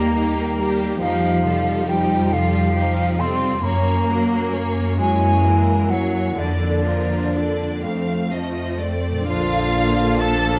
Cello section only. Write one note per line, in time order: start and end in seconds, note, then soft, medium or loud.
0.00 1.01 A#3 medium
1.01 1.86 F3 medium
1.88 2.32 G3 medium
2.33 3.20 F3 medium
3.19 3.63 C4 medium
3.63 4.96 A#3 medium
4.98 5.91 G#3 medium
5.91 6.39 F#3 medium
6.39 7.81 D3 soft
9.30 10.59 A#2 medium